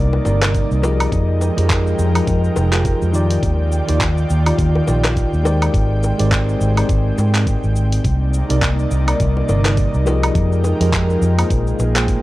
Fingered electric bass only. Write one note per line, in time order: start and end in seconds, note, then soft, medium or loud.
0.00 0.18 C2 medium
0.26 0.62 G1 loud
0.71 1.06 C2 medium
1.12 1.49 F2 medium
1.58 1.92 F2 medium
1.99 2.20 F2 loud
2.28 2.48 F2 medium
2.57 2.93 F1 medium
3.02 3.37 F2 medium
3.43 3.80 D#2 loud
3.89 4.23 D#2 medium
4.30 4.51 D#2 loud
4.58 4.79 D#2 medium
4.88 5.24 A#1 medium
5.33 5.68 D#2 medium
5.74 6.10 G#1 loud
6.20 6.54 G#1 medium
6.61 6.81 G#1 loud
6.89 7.10 G#1 medium
7.18 7.55 G#2 loud
7.64 7.98 G#1 medium
8.05 8.41 C2 loud
8.50 8.85 C2 medium
8.91 9.12 C2 loud
9.20 9.41 C2 medium
9.49 9.85 G1 loud
9.94 10.29 C2 medium
10.35 10.72 F2 loud
10.80 11.15 F2 medium
11.22 11.42 F2 loud
11.51 11.71 A#1 medium
11.79 12.16 A#1 medium